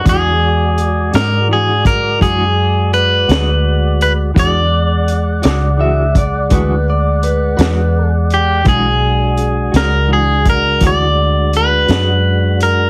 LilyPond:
<<
  \new Staff \with { instrumentName = "Clean electric guitar" } { \time 12/8 \key e \mixolydian \tempo 4. = 56 r1. | r4. d''8 e''8 d''8 b'8 d''8 b'8 b'8. r8. | r1. | }
  \new Staff \with { instrumentName = "Clean electric guitar" } { \time 12/8 \key e \mixolydian gis'4. ais'8 gis'8 ais'8 gis'4 b'4. b'8 | d''1 r4. g'8 | gis'4. ais'8 gis'8 ais'8 d''4 b'4. ais'8 | }
  \new Staff \with { instrumentName = "Tonewheel organ" } { \time 12/8 \key e \mixolydian <gis fis' d''>1. | <gis d'' fis''>1. | <gis d' fis'>1. | }
  \new Staff \with { instrumentName = "Clean electric guitar" } { \time 12/8 \key e \mixolydian <e gis d' fis'>8 r4 <gis d' fis'>8 <e gis d' fis'>8 r8 <e gis d' fis'>8 r4 <gis d' fis'>8 r4 | <e gis d' fis'>8 r4 <gis d' fis'>8 <e gis d' fis'>8 r8 <e gis d' fis'>8 r4 <gis d' fis'>8 r4 | <e gis d' fis'>8 r4 <gis d' fis'>8 <e gis d' fis'>8 r8 <e gis d' fis'>8 r4 <gis d' fis'>8 r4 | }
  \new Staff \with { instrumentName = "Fingered electric bass" } { \clef bass \time 12/8 \key e \mixolydian e,4. gis,4. fis,4. d,4. | e,4. cis,4. d,4. e,4. | b,,4. cis,4. d,4. fis,4. | }
  \new DrumStaff \with { instrumentName = "Drums" } \drummode { \time 12/8 <hh bd>4 hh8 <hh sn>4 <hh bd>8 <hh bd>4 hh8 <hh sn>4 hh8 | <hh bd>4 hh8 <hh sn>4 <hh bd>8 <hh bd>4 hh8 <hh sn>4 hh8 | <hh bd>4 hh8 <hh sn>4 <hh bd>8 <hh bd>4 hh8 <hh sn>4 hh8 | }
>>